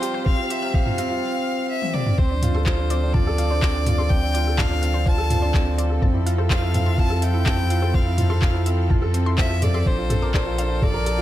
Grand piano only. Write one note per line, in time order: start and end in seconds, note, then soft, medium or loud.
0.00 0.26 C4 loud
0.00 0.38 F4 loud
0.00 0.02 G4 loud
0.00 0.50 G4 loud
0.00 0.14 C5 medium
0.14 0.25 C5 medium
0.26 0.38 C4 medium
0.38 0.45 F4 medium
0.50 0.62 G4 loud
0.62 0.74 C5 medium
0.74 0.86 G4 medium
0.86 0.93 F4 medium
0.99 1.10 C4 loud
1.10 1.17 F4 medium
2.19 2.30 C4 medium
2.31 2.42 D4 medium
2.43 2.54 F4 medium
2.55 2.66 A4 medium
2.67 2.78 F4 medium
2.79 2.90 D4 medium
2.91 3.02 C4 medium
3.03 3.14 D4 medium
3.15 3.22 F4 medium
3.27 3.38 A4 loud
3.39 3.50 F4 medium
3.51 3.62 D4 loud
3.63 3.74 C4 medium
3.75 3.86 D4 medium
3.87 3.94 F4 medium
3.99 4.10 A4 medium
4.11 4.22 C4 medium
4.23 4.34 D4 medium
4.35 4.46 F4 medium
4.47 4.58 A4 medium
4.59 4.70 F4 medium
4.71 4.82 D4 medium
4.83 4.94 C4 medium
4.94 5.06 D4 medium
5.06 5.13 F4 medium
5.18 5.30 A4 loud
5.30 5.42 F4 medium
5.42 5.54 D4 loud
5.54 5.65 C4 medium
5.66 5.78 D4 medium
5.78 5.85 F4 medium
5.90 6.02 A4 medium
6.02 6.14 C4 medium
6.14 6.25 E4 medium
6.26 6.37 F4 medium
6.38 6.50 A4 medium
6.50 6.62 F4 medium
6.62 6.74 E4 medium
6.74 6.86 C4 medium
6.86 6.98 E4 medium
6.98 7.05 F4 medium
7.10 7.22 A4 loud
7.22 7.33 F4 medium
7.34 7.45 E4 medium
7.46 7.58 C4 medium
7.58 7.70 E4 medium
7.70 7.77 F4 medium
7.82 7.94 A4 medium
7.94 8.06 C4 medium
8.06 8.17 E4 medium
8.18 8.29 F4 medium
8.30 8.41 A4 medium
8.42 8.53 F4 medium
8.54 8.66 E4 medium
8.66 8.77 C4 medium
8.78 8.90 E4 medium
8.90 8.97 F4 medium
9.02 9.14 A4 loud
9.14 9.25 C4 medium
9.26 9.38 E4 medium
9.38 9.50 F4 medium
9.50 9.61 A4 medium
9.62 9.73 A4 medium
9.74 9.86 A4 medium
9.86 9.98 D4 medium
9.98 10.10 F4 medium
10.10 10.21 A4 medium
10.22 10.34 A#4 medium
10.34 10.46 A4 medium
10.46 10.58 F4 medium
10.58 10.70 D4 medium
10.70 10.81 F4 medium
10.82 10.89 A4 medium
10.94 11.06 A#4 loud
11.06 11.18 A4 medium
11.18 11.22 F4 loud